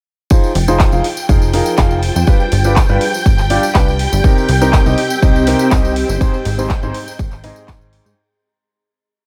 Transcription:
0.30 grand piano F3 D#4 F4 G#4 C5, ambient pad F4, string machine G5, kick, ride, tambourine
0.43 tambourine
0.55 analog synth bass F1, open hi-hat, ride
0.68 grand piano F3 D#4 F4 G#4 C5, tambourine
0.79 kick, snare, clap, ride, tambourine
0.92 analog synth bass F1, grand piano F3 D#4 F4 G#4 F5, ride, tambourine
1.04 open hi-hat, ride
1.17 tambourine
1.29 analog synth bass F1, grand piano F3 D#4 F4 G#4 F5, kick, ride, tambourine
1.42 ride, tambourine
1.53 grand piano F3 D#4 F4 G#4 A#4, snare, open hi-hat, ride
1.66 tambourine
1.77 analog synth bass F1, grand piano F3 D#4 F4 G#4 F5, kick, snare, clap, ride, tambourine
1.91 ride, tambourine
2.02 open hi-hat, ride
2.16 analog synth bass F2, ride, tambourine
2.27 grand piano G3 D4 F4 G4 B4, ambient pad G4, kick, ride, tambourine
2.40 tambourine
2.52 analog synth bass G1, open hi-hat, ride
2.64 grand piano G3 D4 F4 G4 B4, ride, tambourine
2.76 kick, snare, clap, ride, tambourine
2.89 analog synth bass G1, grand piano G3 D4 F4 G4 B4, ride, tambourine
3.01 open hi-hat
3.14 tambourine
3.26 analog synth bass G1, kick, ride, tambourine
3.38 clap, tambourine
3.50 grand piano G3 D4 F4 G4 D5, open hi-hat, ride
3.63 tambourine
3.75 analog synth bass C2, grand piano D4 F4 G4 B4, kick, snare, clap, ride, tambourine
3.88 tambourine
3.99 ambient pad C4, open hi-hat, ride
4.12 analog synth bass G1, ride, tambourine
4.24 grand piano C3 C4 D#4 G4 A#4, kick, ride, tambourine
4.38 tambourine
4.48 analog synth bass C2, open hi-hat, ride
4.62 grand piano C3 C4 D#4 G4 A#4, tambourine
4.73 ambient pad C5, kick, snare, clap, ride, tambourine
4.77 ambient pad D#5
4.86 analog synth bass C2, grand piano C3 C4 D#4 G4 D#5, ride, tambourine
4.97 open hi-hat, ride
5.10 tambourine
5.22 analog synth bass C2, grand piano C3 C4 D#4 G4 D#5, kick, ride, tambourine
5.36 ride, tambourine
5.46 grand piano C3 C4 D#4 G4 A#4, snare, open hi-hat, ride
5.59 tambourine
5.71 analog synth bass C2, grand piano C3 C4 D#4 G4 D#5, kick, snare, clap, ride, tambourine
5.85 ride, tambourine
5.96 open hi-hat, ride
6.09 analog synth bass G1, ride, tambourine
6.21 grand piano G#2 C4 D#4 G#4 C5, ambient pad G#4, kick, ride, tambourine
6.34 ambient pad A#5, tambourine
6.45 analog synth bass G#1, open hi-hat, ride
6.54 ambient pad C6
6.58 grand piano G#2 C4 D#4 G#4 C5, ride, tambourine
6.70 kick, snare, clap, ride, tambourine
6.83 analog synth bass G#1, grand piano G#2 C4 D#4 G#4 C5, ride, tambourine
6.94 open hi-hat
7.08 tambourine
7.19 analog synth bass G#1, kick, ride, tambourine
7.31 clap, tambourine
7.44 grand piano G#2 C4 D#4 G#4 D#5, open hi-hat, ride
7.56 tambourine
7.68 analog synth bass G#1, kick, snare, clap, ride, tambourine
7.81 tambourine
7.93 open hi-hat, ride
8.06 analog synth bass G#2, ride, tambourine

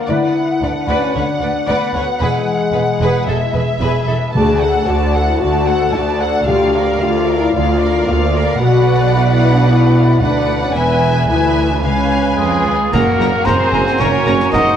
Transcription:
Already playing: harp D4 F4 A#4 F5
0.08 cello section D2, double bass section D2, harp D3, french horn section E4, viola section B4, violin section D5 F#5
0.28 harp B3
0.45 harp B4
0.61 double bass section D2, cello section D2, french horn section D4, viola section B4, violin section D5, harp F#5
0.80 harp B4
0.87 double bass section D2, cello section D2, viola section B4, violin section D5
0.98 french horn section C#4, harp F#4
1.15 cello section D2, double bass section D2, harp D3, french horn section D4, viola section B4, violin section C#5
1.34 harp B3
1.41 double bass section D2, cello section D2, viola section B4, violin section D5
1.51 harp B4
1.68 cello section D2, double bass section D2, french horn section B3, viola section B4, violin section D5, harp F#5
1.86 harp B4
1.94 cello section D2, double bass section D2, viola section B4, violin section C#5
2.04 harp F#4
2.20 double bass section E1, cello section E2, harp E3, french horn section G#3, viola section G#4, violin section B4
2.39 harp E4
2.57 harp G#4
2.73 double bass section E1, cello section E2, viola section G#4, violin section B4, harp B5
2.93 harp G#4
3.00 double bass section E1, cello section E2, viola section G#4, violin section B4
3.10 harp B4
3.27 double bass section E1, cello section E2, harp G#3, viola section G#4, violin section A4 E5
3.46 harp E4
3.54 double bass section E1, cello section E2, viola section G#4, violin section B4
3.64 harp G#4
3.80 double bass section E1, cello section E2, viola section G#4, violin section B4, harp B5
4.00 harp G#4
4.07 double bass section E1, cello section E2, viola section G#4, violin section A4
4.18 harp B4
4.33 double bass section D2, cello section D2, timpani D3, harp D3, viola section F#4, french horn section G#4, violin section D5 A5
4.53 harp A3
4.61 viola section A4, violin section F#5
4.71 harp D5
4.86 double bass section D2, cello section D2, french horn section F#4, viola section F#4, violin section D5 A5, harp F#5
5.06 harp D5
5.15 viola section A4, violin section F#5
5.24 french horn section E4, harp F#4
5.40 double bass section D2, cello section D2, harp D4, french horn section F#4, viola section F#4, violin section D5 A5
5.59 harp A3
5.67 viola section A4, violin section F#5
5.77 harp D5
5.94 cello section D2, double bass section D2, french horn section D4, viola section F#4, violin section D5 A5, harp F#5
6.14 harp D5
6.21 viola section A4, violin section F#5
6.32 harp F#4
6.47 double bass section D2, cello section D2, timpani D3, harp D3, viola section F4, french horn section G4, violin section D5 F5
6.67 harp D4
6.75 viola section A#4, violin section D5 F5
6.84 harp A#4
7.00 cello section D2, double bass section D2, viola section F4, french horn section F4, violin section D5 F5, harp D6
7.20 harp A#4
7.28 viola section A#4, violin section D5 F5
7.38 french horn section E4, harp D5
7.53 cello section D2, double bass section D2, harp D3, french horn section F4, viola section F4, violin section D5 F5
7.74 harp D4
7.80 viola section A#4, violin section D5 F5
7.91 harp A#4
8.07 cello section D2, double bass section D2, french horn section A#3, viola section F4, violin section D5 F5, harp D6
8.26 harp A#4
8.35 viola section A#4, violin section D5 F5
8.45 harp D5
8.60 double bass section B1, cello section B2, harp B2, french horn section F#4, viola section B4, violin section D5 F#5
8.79 harp F#3
8.97 harp D5
9.15 french horn section E4, harp F#4
9.33 harp D5
9.51 harp D4, french horn section D4
9.68 harp B3, french horn section E4
9.86 harp F#3
10.04 harp D5
10.21 cello section D2, double bass section D2, french horn section D4, harp F#4, viola section B4, violin section D5 F#5
10.41 harp D5
10.59 french horn section C#4, harp D4
10.75 double bass section E1, cello section E2, harp E3, french horn section B3, viola section B4, violin section E5 G#5
10.94 harp E4
11.12 harp G#4
11.28 cello section D2, double bass section D2, french horn section E4, viola section B4, violin section E5 G#5, harp B5
11.48 harp G#4
11.67 harp B4
11.72 french horn section D4
11.83 cello section C#2, double bass section C#2, harp C#3, french horn section C#4, viola section B4, violin section F5 G#5
12.03 harp G#3
12.22 harp B4
12.37 cello section F2 G#3, violin section F4, trumpet section G#4, harp F5
12.58 harp B4
12.64 cello section D#2
12.76 harp F4
12.92 double bass section F#1, tuba F#1, harp F#2, cello section A#3, viola section A#3 A#4, french horn section A#3 A#4, trombone section A#3 F#4, violin section F#4 A#5, trumpet section A#4, flute F#5, concert bass drum, crash
13.08 harp A#3
13.19 tuba F#1, double bass section F#1, viola section A#3 A#4, harp A#4, violin section A#5, snare
13.34 harp F#4
13.45 double bass section F#1, tuba F#1, viola section A#3 A#4, cello section C4, violin section G#4 A#5, trumpet section C5, harp F#5, flute A#5, concert bass drum, snare
13.61 harp A#5
13.72 double bass section F#1, tuba F#1, viola section A#3 A#4, harp A#4, flute G#5, violin section A#5
13.87 harp F#4, snare
13.99 tuba F#1, double bass section F#1, harp C#3, viola section A#3 A#4, cello section C#4, violin section A#4 A#5, trumpet section C#5, concert bass drum, snare
14.14 harp A#3
14.27 tuba F#1, double bass section F#1, viola section A#3 A#4, harp A#4, violin section A#5, snare
14.40 harp F#4, snare
14.52 tuba F#1, double bass section F#1, viola section A#3 A#4, cello section D#4, violin section C5 A#5, trumpet section D#5, harp F#5, flute F#5, concert bass drum, snare
14.67 harp A#5

